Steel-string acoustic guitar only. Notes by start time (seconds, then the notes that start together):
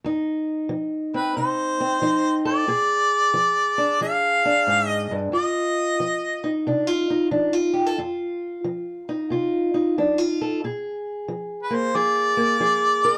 0.04 F2 D#4
0.69 F3
1.14 C4
1.37 C3 D#4
1.80 C4
2.02 F3 D#4
2.45 A4
2.68 A#2 G#4
3.34 F3
3.78 D4
4.01 F3 G#4
4.45 D4
4.67 G#2
5.11 G2
5.32 F2 F4
6.00 F3
6.44 D#4
6.67 C3 D4
6.87 F4
7.10 D#4
7.31 F3 D4
7.53 F4
7.74 G4
7.86 A4
7.98 F2 F4
8.64 F3
9.09 D#4
9.30 C3 F4
9.74 D#4
9.98 F3 D4
10.18 F4
10.41 A4
10.64 A#2 G#4
11.28 F3
11.70 A#3
11.95 F3 G#4
12.37 A#3
12.60 F3 G#4
13.05 A#4